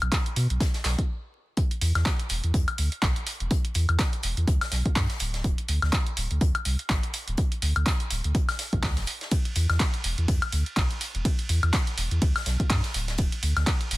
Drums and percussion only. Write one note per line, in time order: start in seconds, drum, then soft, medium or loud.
0.02 closed hi-hat soft
0.02 high woodblock medium
0.12 kick loud
0.12 snare loud
0.12 clap loud
0.12 closed hi-hat medium
0.26 closed hi-hat medium
0.36 closed hi-hat medium
0.36 open hi-hat loud
0.50 closed hi-hat soft
0.60 kick loud
0.60 snare loud
0.60 closed hi-hat medium
0.74 snare medium
0.74 open hi-hat medium
0.84 snare loud
0.84 clap medium
0.84 closed hi-hat medium
0.84 open hi-hat loud
0.98 kick medium
0.98 closed hi-hat soft
1.57 kick loud
1.57 closed hi-hat medium
1.71 closed hi-hat medium
1.81 closed hi-hat medium
1.81 open hi-hat loud
1.95 snare soft
1.95 closed hi-hat soft
1.95 high woodblock medium
2.06 kick loud
2.06 snare loud
2.06 clap loud
2.06 closed hi-hat medium
2.19 closed hi-hat medium
2.29 closed hi-hat medium
2.29 open hi-hat loud
2.44 closed hi-hat soft
2.54 kick loud
2.54 closed hi-hat medium
2.68 closed hi-hat medium
2.68 high woodblock medium
2.78 closed hi-hat medium
2.78 open hi-hat loud
2.92 closed hi-hat soft
3.02 kick loud
3.02 snare loud
3.02 clap loud
3.02 closed hi-hat medium
3.16 closed hi-hat medium
3.27 closed hi-hat medium
3.27 open hi-hat loud
3.40 closed hi-hat soft
3.51 kick loud
3.51 closed hi-hat medium
3.65 closed hi-hat medium
3.74 closed hi-hat medium
3.74 open hi-hat loud
3.89 closed hi-hat soft
3.89 high woodblock medium
3.99 kick loud
3.99 snare loud
3.99 clap loud
3.99 closed hi-hat medium
3.99 closed hi-hat loud
4.13 closed hi-hat medium
4.23 closed hi-hat medium
4.23 open hi-hat loud
4.37 closed hi-hat soft
4.48 kick loud
4.48 closed hi-hat medium
4.61 snare medium
4.61 open hi-hat medium
4.61 high woodblock medium
4.71 snare medium
4.71 closed hi-hat medium
4.71 open hi-hat loud
4.86 kick medium
4.86 closed hi-hat soft
4.96 kick loud
4.96 snare loud
4.96 clap loud
4.96 closed hi-hat medium
4.96 open hi-hat medium
5.09 snare soft
5.09 closed hi-hat medium
5.19 closed hi-hat medium
5.19 open hi-hat loud
5.34 snare soft
5.34 closed hi-hat soft
5.44 kick loud
5.44 closed hi-hat medium
5.58 closed hi-hat medium
5.68 closed hi-hat medium
5.68 open hi-hat loud
5.82 snare soft
5.82 closed hi-hat soft
5.82 high woodblock medium
5.92 kick loud
5.92 snare loud
5.92 clap loud
5.92 closed hi-hat medium
6.07 closed hi-hat medium
6.17 closed hi-hat medium
6.17 open hi-hat loud
6.31 closed hi-hat soft
6.41 kick loud
6.41 closed hi-hat medium
6.55 closed hi-hat soft
6.55 high woodblock medium
6.65 closed hi-hat medium
6.65 open hi-hat loud
6.79 closed hi-hat soft
6.89 kick loud
6.89 snare loud
6.89 clap loud
6.89 closed hi-hat medium
7.03 closed hi-hat medium
7.13 closed hi-hat medium
7.13 open hi-hat loud
7.28 closed hi-hat soft
7.37 kick loud
7.37 closed hi-hat medium
7.52 closed hi-hat medium
7.62 closed hi-hat medium
7.62 open hi-hat loud
7.76 closed hi-hat soft
7.76 high woodblock medium
7.86 kick loud
7.86 snare loud
7.86 clap loud
7.86 closed hi-hat loud
7.86 closed hi-hat medium
8.00 closed hi-hat medium
8.10 closed hi-hat medium
8.10 open hi-hat loud
8.24 closed hi-hat soft
8.35 kick loud
8.35 closed hi-hat medium
8.49 snare soft
8.49 open hi-hat medium
8.49 high woodblock medium
8.59 snare medium
8.59 closed hi-hat medium
8.59 open hi-hat loud
8.73 kick medium
8.73 closed hi-hat soft
8.83 kick loud
8.83 snare loud
8.83 clap loud
8.83 closed hi-hat medium
8.83 open hi-hat medium
8.97 snare soft
8.97 closed hi-hat medium
9.07 closed hi-hat medium
9.07 open hi-hat loud
9.21 snare medium
9.21 closed hi-hat soft
9.31 kick loud
9.31 closed hi-hat loud
9.31 closed hi-hat medium
9.31 ride medium
9.45 closed hi-hat soft
9.55 closed hi-hat medium
9.55 open hi-hat loud
9.70 snare soft
9.70 closed hi-hat soft
9.70 high woodblock medium
9.80 kick loud
9.80 snare loud
9.80 clap loud
9.80 closed hi-hat medium
9.80 ride medium
9.94 closed hi-hat medium
10.04 closed hi-hat medium
10.04 open hi-hat loud
10.18 closed hi-hat soft
10.28 kick loud
10.28 closed hi-hat medium
10.28 ride medium
10.42 closed hi-hat soft
10.42 high woodblock medium
10.52 closed hi-hat medium
10.52 open hi-hat loud
10.66 closed hi-hat soft
10.76 kick loud
10.76 snare loud
10.76 clap loud
10.76 closed hi-hat medium
10.76 ride medium
10.91 closed hi-hat soft
11.01 closed hi-hat medium
11.01 open hi-hat loud
11.15 closed hi-hat soft
11.25 kick loud
11.25 closed hi-hat medium
11.25 ride medium
11.39 closed hi-hat medium
11.49 closed hi-hat medium
11.49 open hi-hat loud
11.63 closed hi-hat soft
11.63 high woodblock medium
11.73 kick loud
11.73 snare loud
11.73 clap loud
11.73 closed hi-hat medium
11.73 ride medium
11.87 closed hi-hat medium
11.98 closed hi-hat medium
11.98 open hi-hat loud
12.11 closed hi-hat soft
12.22 kick loud
12.22 closed hi-hat medium
12.22 ride medium
12.36 snare medium
12.36 open hi-hat medium
12.36 high woodblock medium
12.46 snare medium
12.46 closed hi-hat medium
12.46 open hi-hat loud
12.60 kick medium
12.60 closed hi-hat soft
12.70 kick loud
12.70 snare loud
12.70 clap loud
12.70 closed hi-hat medium
12.70 open hi-hat medium
12.70 ride medium
12.83 snare soft
12.83 closed hi-hat medium
12.94 closed hi-hat medium
12.94 open hi-hat loud
13.08 snare soft
13.08 closed hi-hat soft
13.18 kick loud
13.18 closed hi-hat medium
13.18 ride medium
13.32 closed hi-hat medium
13.43 closed hi-hat medium
13.43 open hi-hat loud
13.56 snare soft
13.56 closed hi-hat soft
13.56 high woodblock medium
13.67 kick loud
13.67 snare loud
13.67 clap loud
13.67 closed hi-hat medium
13.67 ride medium
13.81 closed hi-hat medium
13.91 closed hi-hat medium
13.91 open hi-hat loud